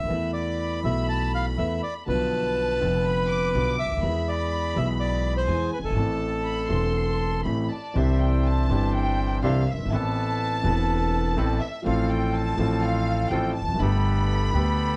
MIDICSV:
0, 0, Header, 1, 6, 480
1, 0, Start_track
1, 0, Key_signature, 0, "minor"
1, 0, Tempo, 490998
1, 102, Time_signature, 4, 2, 24, 8
1, 7776, Key_signature, 0, "major"
1, 9701, Tempo, 486224
1, 14678, End_track
2, 0, Start_track
2, 0, Title_t, "Violin section"
2, 0, Program_c, 0, 48
2, 90, Note_on_c, 0, 83, 80
2, 1988, Note_off_c, 0, 83, 0
2, 2029, Note_on_c, 0, 81, 82
2, 2988, Note_on_c, 0, 83, 81
2, 2993, Note_off_c, 0, 81, 0
2, 3216, Note_on_c, 0, 86, 80
2, 3230, Note_off_c, 0, 83, 0
2, 3451, Note_off_c, 0, 86, 0
2, 3463, Note_on_c, 0, 86, 84
2, 3909, Note_off_c, 0, 86, 0
2, 3938, Note_on_c, 0, 83, 82
2, 5324, Note_off_c, 0, 83, 0
2, 5358, Note_on_c, 0, 80, 72
2, 5802, Note_off_c, 0, 80, 0
2, 5828, Note_on_c, 0, 81, 69
2, 6309, Note_off_c, 0, 81, 0
2, 6310, Note_on_c, 0, 83, 78
2, 6535, Note_off_c, 0, 83, 0
2, 6547, Note_on_c, 0, 84, 80
2, 7245, Note_off_c, 0, 84, 0
2, 7275, Note_on_c, 0, 83, 67
2, 7527, Note_off_c, 0, 83, 0
2, 7532, Note_on_c, 0, 81, 60
2, 7544, Note_on_c, 0, 74, 63
2, 7764, Note_off_c, 0, 74, 0
2, 7775, Note_off_c, 0, 81, 0
2, 7781, Note_on_c, 0, 76, 74
2, 8016, Note_on_c, 0, 79, 76
2, 8020, Note_off_c, 0, 76, 0
2, 8258, Note_off_c, 0, 79, 0
2, 8267, Note_on_c, 0, 81, 86
2, 8745, Note_off_c, 0, 81, 0
2, 8745, Note_on_c, 0, 79, 87
2, 9189, Note_off_c, 0, 79, 0
2, 9224, Note_on_c, 0, 77, 83
2, 9462, Note_off_c, 0, 77, 0
2, 9467, Note_on_c, 0, 76, 78
2, 9703, Note_off_c, 0, 76, 0
2, 9703, Note_on_c, 0, 81, 98
2, 11368, Note_on_c, 0, 76, 83
2, 11376, Note_off_c, 0, 81, 0
2, 11603, Note_on_c, 0, 77, 85
2, 11611, Note_off_c, 0, 76, 0
2, 11831, Note_off_c, 0, 77, 0
2, 11854, Note_on_c, 0, 79, 84
2, 12091, Note_on_c, 0, 81, 96
2, 12092, Note_off_c, 0, 79, 0
2, 12562, Note_on_c, 0, 77, 94
2, 12569, Note_off_c, 0, 81, 0
2, 13044, Note_on_c, 0, 79, 85
2, 13046, Note_off_c, 0, 77, 0
2, 13274, Note_on_c, 0, 81, 85
2, 13288, Note_off_c, 0, 79, 0
2, 13506, Note_off_c, 0, 81, 0
2, 13532, Note_on_c, 0, 83, 100
2, 14678, Note_off_c, 0, 83, 0
2, 14678, End_track
3, 0, Start_track
3, 0, Title_t, "Bandoneon"
3, 0, Program_c, 1, 23
3, 0, Note_on_c, 1, 76, 76
3, 304, Note_off_c, 1, 76, 0
3, 326, Note_on_c, 1, 74, 73
3, 784, Note_off_c, 1, 74, 0
3, 826, Note_on_c, 1, 76, 71
3, 1051, Note_off_c, 1, 76, 0
3, 1065, Note_on_c, 1, 81, 77
3, 1291, Note_off_c, 1, 81, 0
3, 1318, Note_on_c, 1, 77, 73
3, 1425, Note_off_c, 1, 77, 0
3, 1544, Note_on_c, 1, 76, 71
3, 1771, Note_off_c, 1, 76, 0
3, 1790, Note_on_c, 1, 74, 74
3, 1899, Note_off_c, 1, 74, 0
3, 2039, Note_on_c, 1, 71, 87
3, 3673, Note_off_c, 1, 71, 0
3, 3707, Note_on_c, 1, 76, 79
3, 4187, Note_on_c, 1, 74, 75
3, 4198, Note_off_c, 1, 76, 0
3, 4665, Note_on_c, 1, 76, 72
3, 4676, Note_off_c, 1, 74, 0
3, 4770, Note_off_c, 1, 76, 0
3, 4888, Note_on_c, 1, 74, 81
3, 5221, Note_off_c, 1, 74, 0
3, 5250, Note_on_c, 1, 72, 73
3, 5579, Note_off_c, 1, 72, 0
3, 5603, Note_on_c, 1, 71, 64
3, 5656, Note_off_c, 1, 71, 0
3, 5715, Note_on_c, 1, 69, 72
3, 7245, Note_off_c, 1, 69, 0
3, 14678, End_track
4, 0, Start_track
4, 0, Title_t, "Bandoneon"
4, 0, Program_c, 2, 23
4, 7779, Note_on_c, 2, 62, 79
4, 7782, Note_on_c, 2, 64, 72
4, 7784, Note_on_c, 2, 72, 83
4, 8467, Note_off_c, 2, 62, 0
4, 8468, Note_off_c, 2, 64, 0
4, 8469, Note_off_c, 2, 72, 0
4, 8501, Note_on_c, 2, 62, 77
4, 8505, Note_on_c, 2, 64, 69
4, 8505, Note_on_c, 2, 72, 85
4, 9184, Note_off_c, 2, 62, 0
4, 9186, Note_off_c, 2, 64, 0
4, 9186, Note_off_c, 2, 72, 0
4, 9222, Note_on_c, 2, 62, 70
4, 9223, Note_on_c, 2, 64, 71
4, 9225, Note_on_c, 2, 72, 84
4, 9423, Note_off_c, 2, 62, 0
4, 9423, Note_off_c, 2, 64, 0
4, 9424, Note_off_c, 2, 72, 0
4, 9705, Note_on_c, 2, 71, 92
4, 9707, Note_on_c, 2, 69, 73
4, 10385, Note_off_c, 2, 71, 0
4, 10386, Note_off_c, 2, 69, 0
4, 10419, Note_on_c, 2, 69, 77
4, 10422, Note_on_c, 2, 71, 89
4, 11100, Note_off_c, 2, 69, 0
4, 11101, Note_off_c, 2, 71, 0
4, 11132, Note_on_c, 2, 60, 76
4, 11133, Note_on_c, 2, 69, 69
4, 11136, Note_on_c, 2, 71, 83
4, 11335, Note_off_c, 2, 60, 0
4, 11335, Note_off_c, 2, 69, 0
4, 11337, Note_off_c, 2, 71, 0
4, 11614, Note_on_c, 2, 60, 84
4, 11616, Note_on_c, 2, 65, 80
4, 11619, Note_on_c, 2, 69, 86
4, 12295, Note_off_c, 2, 60, 0
4, 12296, Note_off_c, 2, 65, 0
4, 12297, Note_off_c, 2, 69, 0
4, 12332, Note_on_c, 2, 60, 85
4, 12335, Note_on_c, 2, 65, 72
4, 12336, Note_on_c, 2, 69, 86
4, 13015, Note_off_c, 2, 60, 0
4, 13016, Note_off_c, 2, 65, 0
4, 13017, Note_off_c, 2, 69, 0
4, 13051, Note_on_c, 2, 60, 76
4, 13053, Note_on_c, 2, 65, 71
4, 13053, Note_on_c, 2, 69, 82
4, 13253, Note_off_c, 2, 60, 0
4, 13253, Note_off_c, 2, 69, 0
4, 13254, Note_off_c, 2, 65, 0
4, 13539, Note_on_c, 2, 59, 79
4, 13543, Note_on_c, 2, 69, 88
4, 13545, Note_on_c, 2, 67, 76
4, 14223, Note_off_c, 2, 59, 0
4, 14225, Note_off_c, 2, 69, 0
4, 14226, Note_off_c, 2, 67, 0
4, 14259, Note_on_c, 2, 59, 75
4, 14260, Note_on_c, 2, 67, 69
4, 14262, Note_on_c, 2, 69, 92
4, 14678, Note_off_c, 2, 59, 0
4, 14678, Note_off_c, 2, 67, 0
4, 14678, Note_off_c, 2, 69, 0
4, 14678, End_track
5, 0, Start_track
5, 0, Title_t, "Grand piano"
5, 0, Program_c, 3, 0
5, 44, Note_on_c, 3, 39, 57
5, 75, Note_on_c, 3, 52, 66
5, 89, Note_on_c, 3, 57, 52
5, 96, Note_on_c, 3, 40, 64
5, 99, Note_on_c, 3, 59, 51
5, 103, Note_off_c, 3, 39, 0
5, 113, Note_on_c, 3, 69, 64
5, 784, Note_off_c, 3, 57, 0
5, 786, Note_off_c, 3, 52, 0
5, 788, Note_off_c, 3, 40, 0
5, 790, Note_off_c, 3, 59, 0
5, 796, Note_off_c, 3, 69, 0
5, 805, Note_on_c, 3, 52, 58
5, 817, Note_on_c, 3, 57, 53
5, 822, Note_on_c, 3, 35, 70
5, 825, Note_on_c, 3, 47, 72
5, 834, Note_on_c, 3, 59, 54
5, 841, Note_on_c, 3, 69, 63
5, 1504, Note_off_c, 3, 52, 0
5, 1510, Note_off_c, 3, 57, 0
5, 1512, Note_off_c, 3, 35, 0
5, 1514, Note_off_c, 3, 47, 0
5, 1518, Note_off_c, 3, 59, 0
5, 1522, Note_off_c, 3, 69, 0
5, 1549, Note_on_c, 3, 52, 68
5, 1551, Note_on_c, 3, 40, 67
5, 1553, Note_on_c, 3, 59, 52
5, 1555, Note_on_c, 3, 57, 53
5, 1557, Note_on_c, 3, 69, 65
5, 1753, Note_off_c, 3, 40, 0
5, 1753, Note_off_c, 3, 52, 0
5, 1754, Note_off_c, 3, 59, 0
5, 1755, Note_off_c, 3, 57, 0
5, 1756, Note_off_c, 3, 69, 0
5, 2015, Note_on_c, 3, 50, 58
5, 2028, Note_on_c, 3, 53, 53
5, 2032, Note_on_c, 3, 35, 67
5, 2035, Note_on_c, 3, 47, 65
5, 2041, Note_on_c, 3, 59, 52
5, 2052, Note_on_c, 3, 65, 64
5, 2711, Note_off_c, 3, 50, 0
5, 2717, Note_off_c, 3, 53, 0
5, 2719, Note_off_c, 3, 35, 0
5, 2721, Note_off_c, 3, 47, 0
5, 2724, Note_off_c, 3, 59, 0
5, 2728, Note_on_c, 3, 50, 59
5, 2730, Note_off_c, 3, 65, 0
5, 2740, Note_on_c, 3, 53, 57
5, 2748, Note_on_c, 3, 29, 70
5, 2748, Note_on_c, 3, 41, 71
5, 2752, Note_on_c, 3, 59, 57
5, 2769, Note_on_c, 3, 65, 63
5, 3422, Note_off_c, 3, 50, 0
5, 3428, Note_off_c, 3, 53, 0
5, 3432, Note_off_c, 3, 29, 0
5, 3432, Note_off_c, 3, 41, 0
5, 3434, Note_off_c, 3, 59, 0
5, 3442, Note_off_c, 3, 65, 0
5, 3473, Note_on_c, 3, 50, 60
5, 3475, Note_on_c, 3, 53, 56
5, 3478, Note_on_c, 3, 35, 69
5, 3479, Note_on_c, 3, 65, 64
5, 3480, Note_on_c, 3, 47, 71
5, 3481, Note_on_c, 3, 59, 57
5, 3672, Note_off_c, 3, 50, 0
5, 3673, Note_off_c, 3, 53, 0
5, 3674, Note_off_c, 3, 35, 0
5, 3675, Note_off_c, 3, 47, 0
5, 3675, Note_off_c, 3, 65, 0
5, 3676, Note_off_c, 3, 59, 0
5, 3776, Note_on_c, 3, 37, 41
5, 3822, Note_on_c, 3, 38, 49
5, 3832, Note_off_c, 3, 37, 0
5, 3880, Note_on_c, 3, 39, 63
5, 3884, Note_off_c, 3, 38, 0
5, 3938, Note_on_c, 3, 52, 69
5, 3943, Note_off_c, 3, 39, 0
5, 3948, Note_on_c, 3, 56, 52
5, 3950, Note_on_c, 3, 40, 70
5, 3960, Note_on_c, 3, 59, 55
5, 3969, Note_on_c, 3, 68, 64
5, 4621, Note_off_c, 3, 52, 0
5, 4625, Note_off_c, 3, 56, 0
5, 4626, Note_off_c, 3, 40, 0
5, 4631, Note_off_c, 3, 59, 0
5, 4635, Note_on_c, 3, 52, 65
5, 4636, Note_off_c, 3, 68, 0
5, 4656, Note_on_c, 3, 56, 56
5, 4659, Note_on_c, 3, 35, 70
5, 4661, Note_on_c, 3, 47, 76
5, 4661, Note_on_c, 3, 59, 58
5, 4677, Note_on_c, 3, 68, 67
5, 5320, Note_off_c, 3, 52, 0
5, 5330, Note_off_c, 3, 56, 0
5, 5332, Note_off_c, 3, 35, 0
5, 5333, Note_off_c, 3, 47, 0
5, 5333, Note_off_c, 3, 59, 0
5, 5341, Note_off_c, 3, 68, 0
5, 5364, Note_on_c, 3, 40, 68
5, 5364, Note_on_c, 3, 52, 72
5, 5365, Note_on_c, 3, 56, 52
5, 5369, Note_on_c, 3, 59, 53
5, 5370, Note_on_c, 3, 68, 64
5, 5564, Note_off_c, 3, 40, 0
5, 5565, Note_off_c, 3, 56, 0
5, 5567, Note_off_c, 3, 52, 0
5, 5567, Note_off_c, 3, 59, 0
5, 5567, Note_off_c, 3, 68, 0
5, 5664, Note_on_c, 3, 30, 42
5, 5723, Note_off_c, 3, 30, 0
5, 5723, Note_on_c, 3, 31, 56
5, 5766, Note_on_c, 3, 32, 58
5, 5781, Note_off_c, 3, 31, 0
5, 5807, Note_on_c, 3, 52, 56
5, 5824, Note_on_c, 3, 57, 53
5, 5826, Note_on_c, 3, 45, 70
5, 5829, Note_on_c, 3, 33, 67
5, 5833, Note_off_c, 3, 32, 0
5, 5838, Note_on_c, 3, 60, 53
5, 5849, Note_on_c, 3, 69, 65
5, 6502, Note_off_c, 3, 52, 0
5, 6510, Note_off_c, 3, 57, 0
5, 6511, Note_off_c, 3, 45, 0
5, 6513, Note_off_c, 3, 33, 0
5, 6517, Note_off_c, 3, 60, 0
5, 6523, Note_off_c, 3, 69, 0
5, 6530, Note_on_c, 3, 52, 59
5, 6541, Note_on_c, 3, 57, 54
5, 6549, Note_on_c, 3, 40, 69
5, 6551, Note_on_c, 3, 28, 66
5, 6555, Note_on_c, 3, 60, 55
5, 6562, Note_on_c, 3, 69, 67
5, 7239, Note_off_c, 3, 52, 0
5, 7244, Note_off_c, 3, 57, 0
5, 7248, Note_off_c, 3, 40, 0
5, 7249, Note_off_c, 3, 28, 0
5, 7251, Note_off_c, 3, 60, 0
5, 7255, Note_off_c, 3, 69, 0
5, 7278, Note_on_c, 3, 52, 60
5, 7284, Note_on_c, 3, 57, 57
5, 7286, Note_on_c, 3, 33, 68
5, 7286, Note_on_c, 3, 45, 68
5, 7286, Note_on_c, 3, 69, 65
5, 7289, Note_on_c, 3, 60, 53
5, 7489, Note_off_c, 3, 52, 0
5, 7493, Note_off_c, 3, 33, 0
5, 7493, Note_off_c, 3, 45, 0
5, 7493, Note_off_c, 3, 57, 0
5, 7494, Note_off_c, 3, 69, 0
5, 7495, Note_off_c, 3, 60, 0
5, 7757, Note_on_c, 3, 52, 62
5, 7768, Note_on_c, 3, 60, 62
5, 7774, Note_on_c, 3, 48, 75
5, 7777, Note_on_c, 3, 36, 75
5, 7777, Note_on_c, 3, 62, 55
5, 7789, Note_on_c, 3, 67, 67
5, 8455, Note_off_c, 3, 52, 0
5, 8461, Note_off_c, 3, 60, 0
5, 8464, Note_off_c, 3, 48, 0
5, 8465, Note_off_c, 3, 36, 0
5, 8465, Note_off_c, 3, 62, 0
5, 8471, Note_off_c, 3, 67, 0
5, 8482, Note_on_c, 3, 52, 68
5, 8492, Note_on_c, 3, 60, 62
5, 8497, Note_on_c, 3, 43, 78
5, 8499, Note_on_c, 3, 31, 81
5, 8505, Note_on_c, 3, 62, 63
5, 8518, Note_on_c, 3, 67, 72
5, 9175, Note_off_c, 3, 52, 0
5, 9180, Note_off_c, 3, 60, 0
5, 9182, Note_off_c, 3, 43, 0
5, 9183, Note_off_c, 3, 31, 0
5, 9186, Note_off_c, 3, 62, 0
5, 9193, Note_off_c, 3, 67, 0
5, 9211, Note_on_c, 3, 52, 68
5, 9216, Note_on_c, 3, 48, 78
5, 9219, Note_on_c, 3, 60, 62
5, 9219, Note_on_c, 3, 62, 63
5, 9222, Note_on_c, 3, 36, 79
5, 9222, Note_on_c, 3, 67, 72
5, 9418, Note_off_c, 3, 52, 0
5, 9420, Note_off_c, 3, 48, 0
5, 9421, Note_off_c, 3, 60, 0
5, 9421, Note_off_c, 3, 62, 0
5, 9423, Note_off_c, 3, 36, 0
5, 9423, Note_off_c, 3, 67, 0
5, 9515, Note_on_c, 3, 30, 48
5, 9560, Note_on_c, 3, 31, 61
5, 9577, Note_off_c, 3, 30, 0
5, 9630, Note_off_c, 3, 31, 0
5, 9631, Note_on_c, 3, 32, 69
5, 9679, Note_on_c, 3, 52, 63
5, 9693, Note_on_c, 3, 59, 64
5, 9695, Note_off_c, 3, 32, 0
5, 9695, Note_on_c, 3, 33, 80
5, 9697, Note_on_c, 3, 45, 80
5, 9705, Note_on_c, 3, 60, 58
5, 9712, Note_on_c, 3, 69, 73
5, 10372, Note_off_c, 3, 52, 0
5, 10379, Note_off_c, 3, 59, 0
5, 10380, Note_off_c, 3, 33, 0
5, 10381, Note_off_c, 3, 45, 0
5, 10385, Note_off_c, 3, 60, 0
5, 10389, Note_off_c, 3, 69, 0
5, 10398, Note_on_c, 3, 52, 73
5, 10412, Note_on_c, 3, 59, 62
5, 10417, Note_on_c, 3, 28, 82
5, 10420, Note_on_c, 3, 40, 82
5, 10425, Note_on_c, 3, 60, 67
5, 10439, Note_on_c, 3, 69, 77
5, 11090, Note_off_c, 3, 52, 0
5, 11096, Note_off_c, 3, 59, 0
5, 11099, Note_off_c, 3, 28, 0
5, 11100, Note_off_c, 3, 40, 0
5, 11103, Note_off_c, 3, 60, 0
5, 11110, Note_off_c, 3, 69, 0
5, 11123, Note_on_c, 3, 59, 64
5, 11124, Note_on_c, 3, 33, 84
5, 11124, Note_on_c, 3, 45, 84
5, 11125, Note_on_c, 3, 52, 75
5, 11127, Note_on_c, 3, 60, 63
5, 11129, Note_on_c, 3, 69, 79
5, 11330, Note_off_c, 3, 59, 0
5, 11331, Note_off_c, 3, 33, 0
5, 11331, Note_off_c, 3, 45, 0
5, 11331, Note_off_c, 3, 52, 0
5, 11332, Note_off_c, 3, 60, 0
5, 11333, Note_off_c, 3, 69, 0
5, 11575, Note_on_c, 3, 53, 64
5, 11594, Note_on_c, 3, 57, 63
5, 11598, Note_on_c, 3, 33, 77
5, 11599, Note_on_c, 3, 45, 82
5, 11604, Note_on_c, 3, 60, 65
5, 11617, Note_on_c, 3, 69, 75
5, 12275, Note_off_c, 3, 53, 0
5, 12284, Note_off_c, 3, 57, 0
5, 12287, Note_off_c, 3, 33, 0
5, 12287, Note_off_c, 3, 45, 0
5, 12289, Note_off_c, 3, 60, 0
5, 12296, Note_off_c, 3, 69, 0
5, 12307, Note_on_c, 3, 53, 68
5, 12320, Note_on_c, 3, 57, 65
5, 12324, Note_on_c, 3, 45, 85
5, 12329, Note_on_c, 3, 33, 82
5, 12333, Note_on_c, 3, 60, 63
5, 12346, Note_on_c, 3, 69, 78
5, 13002, Note_off_c, 3, 53, 0
5, 13009, Note_off_c, 3, 57, 0
5, 13011, Note_off_c, 3, 45, 0
5, 13013, Note_off_c, 3, 33, 0
5, 13015, Note_off_c, 3, 60, 0
5, 13022, Note_off_c, 3, 69, 0
5, 13043, Note_on_c, 3, 45, 79
5, 13043, Note_on_c, 3, 53, 67
5, 13044, Note_on_c, 3, 60, 63
5, 13045, Note_on_c, 3, 57, 61
5, 13046, Note_on_c, 3, 33, 81
5, 13047, Note_on_c, 3, 69, 72
5, 13249, Note_off_c, 3, 45, 0
5, 13249, Note_off_c, 3, 53, 0
5, 13249, Note_off_c, 3, 60, 0
5, 13250, Note_off_c, 3, 33, 0
5, 13250, Note_off_c, 3, 57, 0
5, 13251, Note_off_c, 3, 69, 0
5, 13363, Note_on_c, 3, 40, 46
5, 13412, Note_on_c, 3, 41, 59
5, 13417, Note_off_c, 3, 40, 0
5, 13468, Note_on_c, 3, 42, 69
5, 13472, Note_off_c, 3, 41, 0
5, 13503, Note_on_c, 3, 50, 70
5, 13518, Note_on_c, 3, 31, 79
5, 13518, Note_on_c, 3, 57, 60
5, 13523, Note_on_c, 3, 43, 77
5, 13529, Note_on_c, 3, 59, 63
5, 13530, Note_off_c, 3, 42, 0
5, 13542, Note_on_c, 3, 67, 74
5, 14205, Note_off_c, 3, 50, 0
5, 14213, Note_off_c, 3, 31, 0
5, 14213, Note_off_c, 3, 57, 0
5, 14215, Note_off_c, 3, 43, 0
5, 14218, Note_off_c, 3, 59, 0
5, 14225, Note_off_c, 3, 67, 0
5, 14237, Note_on_c, 3, 50, 66
5, 14247, Note_on_c, 3, 57, 62
5, 14252, Note_off_c, 3, 50, 0
5, 14254, Note_on_c, 3, 38, 81
5, 14258, Note_on_c, 3, 50, 77
5, 14264, Note_on_c, 3, 59, 63
5, 14273, Note_on_c, 3, 67, 79
5, 14678, Note_off_c, 3, 38, 0
5, 14678, Note_off_c, 3, 50, 0
5, 14678, Note_off_c, 3, 57, 0
5, 14678, Note_off_c, 3, 59, 0
5, 14678, Note_off_c, 3, 67, 0
5, 14678, End_track
6, 0, Start_track
6, 0, Title_t, "Upright bass"
6, 0, Program_c, 4, 32
6, 35, Note_on_c, 4, 39, 57
6, 93, Note_off_c, 4, 39, 0
6, 99, Note_on_c, 4, 40, 74
6, 789, Note_off_c, 4, 40, 0
6, 822, Note_on_c, 4, 35, 73
6, 1512, Note_off_c, 4, 35, 0
6, 1549, Note_on_c, 4, 40, 81
6, 1752, Note_off_c, 4, 40, 0
6, 2029, Note_on_c, 4, 35, 70
6, 2718, Note_off_c, 4, 35, 0
6, 2758, Note_on_c, 4, 29, 74
6, 3437, Note_off_c, 4, 29, 0
6, 3468, Note_on_c, 4, 35, 79
6, 3669, Note_off_c, 4, 35, 0
6, 3768, Note_on_c, 4, 37, 42
6, 3820, Note_off_c, 4, 37, 0
6, 3826, Note_on_c, 4, 38, 52
6, 3876, Note_off_c, 4, 38, 0
6, 3882, Note_on_c, 4, 39, 63
6, 3933, Note_off_c, 4, 39, 0
6, 3939, Note_on_c, 4, 40, 80
6, 4621, Note_off_c, 4, 40, 0
6, 4658, Note_on_c, 4, 35, 84
6, 5331, Note_off_c, 4, 35, 0
6, 5358, Note_on_c, 4, 40, 77
6, 5561, Note_off_c, 4, 40, 0
6, 5661, Note_on_c, 4, 30, 42
6, 5704, Note_off_c, 4, 30, 0
6, 5710, Note_on_c, 4, 31, 49
6, 5768, Note_off_c, 4, 31, 0
6, 5774, Note_on_c, 4, 32, 60
6, 5827, Note_off_c, 4, 32, 0
6, 5833, Note_on_c, 4, 33, 76
6, 6515, Note_off_c, 4, 33, 0
6, 6549, Note_on_c, 4, 28, 78
6, 7248, Note_off_c, 4, 28, 0
6, 7286, Note_on_c, 4, 33, 72
6, 7494, Note_off_c, 4, 33, 0
6, 7778, Note_on_c, 4, 36, 86
6, 8466, Note_off_c, 4, 36, 0
6, 8501, Note_on_c, 4, 31, 84
6, 9184, Note_off_c, 4, 31, 0
6, 9214, Note_on_c, 4, 36, 84
6, 9419, Note_off_c, 4, 36, 0
6, 9520, Note_on_c, 4, 30, 47
6, 9570, Note_off_c, 4, 30, 0
6, 9576, Note_on_c, 4, 31, 57
6, 9630, Note_off_c, 4, 31, 0
6, 9636, Note_on_c, 4, 32, 70
6, 9694, Note_off_c, 4, 32, 0
6, 9700, Note_on_c, 4, 33, 83
6, 10382, Note_off_c, 4, 33, 0
6, 10411, Note_on_c, 4, 28, 88
6, 11096, Note_off_c, 4, 28, 0
6, 11136, Note_on_c, 4, 33, 96
6, 11337, Note_off_c, 4, 33, 0
6, 11613, Note_on_c, 4, 33, 87
6, 12294, Note_off_c, 4, 33, 0
6, 12322, Note_on_c, 4, 33, 91
6, 13009, Note_off_c, 4, 33, 0
6, 13041, Note_on_c, 4, 33, 86
6, 13248, Note_off_c, 4, 33, 0
6, 13340, Note_on_c, 4, 28, 49
6, 13403, Note_off_c, 4, 28, 0
6, 13408, Note_on_c, 4, 29, 62
6, 13464, Note_off_c, 4, 29, 0
6, 13470, Note_on_c, 4, 30, 70
6, 13520, Note_off_c, 4, 30, 0
6, 13526, Note_on_c, 4, 31, 85
6, 14216, Note_off_c, 4, 31, 0
6, 14256, Note_on_c, 4, 38, 90
6, 14678, Note_off_c, 4, 38, 0
6, 14678, End_track
0, 0, End_of_file